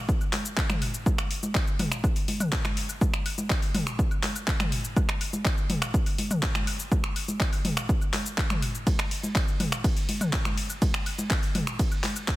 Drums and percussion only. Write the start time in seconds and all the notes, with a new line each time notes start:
0.09 kick, cabasa
0.21 cabasa, high woodblock
0.33 clap, open hi-hat, high conga
0.45 cabasa
0.57 kick, clap, cabasa, high woodblock
0.70 finger snap, mid tom, high conga, cabasa
0.82 open hi-hat, high woodblock
0.94 cabasa
1.06 kick, high conga, cabasa
1.18 finger snap, cabasa, high woodblock
1.31 open hi-hat
1.43 high conga, cabasa
1.55 kick, clap, cabasa, high woodblock
1.67 cabasa
1.79 mid tom, open hi-hat, high conga, high woodblock
1.92 finger snap, cabasa
2.04 kick, cabasa, high woodblock
2.16 open hi-hat, cabasa
2.28 open hi-hat, high conga
2.40 mid tom, cabasa, high woodblock
2.52 kick, clap, cabasa
2.65 finger snap, high conga, cabasa, high woodblock
2.77 open hi-hat
2.89 cabasa, high woodblock
3.01 kick, high conga, cabasa
3.14 finger snap, cabasa
3.26 open hi-hat, high woodblock
3.38 high conga, cabasa
3.50 kick, clap, cabasa, high woodblock
3.62 open hi-hat, cabasa
3.75 mid tom, open hi-hat, high conga, high woodblock
3.87 finger snap, cabasa
3.99 kick, cabasa
4.11 cabasa, high woodblock
4.23 clap, open hi-hat, high conga
4.36 cabasa, high woodblock
4.48 kick, clap, cabasa
4.60 finger snap, mid tom, high conga, cabasa, high woodblock
4.72 open hi-hat
4.84 cabasa
4.96 kick, high conga, cabasa, high woodblock
5.09 finger snap, cabasa
5.21 open hi-hat, high woodblock
5.33 high conga, cabasa
5.45 kick, clap, cabasa, high woodblock
5.58 cabasa
5.70 mid tom, open hi-hat, high conga
5.82 finger snap, cabasa, high woodblock
5.94 kick, cabasa
6.06 open hi-hat, cabasa, high woodblock
6.18 open hi-hat, high conga
6.31 mid tom, cabasa, high woodblock
6.43 kick, clap, cabasa
6.55 finger snap, high conga, cabasa
6.67 open hi-hat, high woodblock
6.80 cabasa
6.92 kick, high conga, cabasa, high woodblock
7.04 finger snap, cabasa
7.16 open hi-hat, high woodblock
7.28 high conga, cabasa
7.40 kick, clap, cabasa
7.53 open hi-hat, cabasa, high woodblock
7.65 mid tom, open hi-hat, high conga
7.77 finger snap, cabasa, high woodblock
7.89 kick, cabasa
8.01 cabasa, high woodblock
8.13 clap, open hi-hat, high conga
8.26 cabasa
8.38 kick, clap, cabasa, high woodblock
8.50 finger snap, mid tom, high conga, cabasa
8.62 open hi-hat, high woodblock
8.75 cabasa
8.87 kick, ride, high conga, cabasa
8.99 finger snap, cabasa, high woodblock
9.11 open hi-hat
9.23 high conga, cabasa
9.35 kick, clap, ride, cabasa, high woodblock
9.48 cabasa
9.60 mid tom, open hi-hat, high conga, high woodblock
9.72 finger snap, cabasa
9.84 kick, ride, cabasa, high woodblock
9.97 open hi-hat, cabasa
10.09 open hi-hat, high conga
10.21 mid tom, cabasa, high woodblock
10.33 kick, clap, ride, cabasa
10.45 finger snap, high conga, cabasa, high woodblock
10.57 open hi-hat
10.70 cabasa, high woodblock
10.82 kick, ride, high conga, cabasa
10.94 finger snap, cabasa
11.06 open hi-hat, high woodblock
11.18 high conga, cabasa
11.30 kick, clap, ride, cabasa, high woodblock
11.43 open hi-hat, cabasa
11.55 mid tom, open hi-hat, high conga, high woodblock
11.67 finger snap, cabasa
11.79 kick, ride, cabasa
11.92 cabasa, high woodblock
12.04 clap, open hi-hat, high conga
12.16 cabasa, high woodblock
12.28 kick, clap, ride, cabasa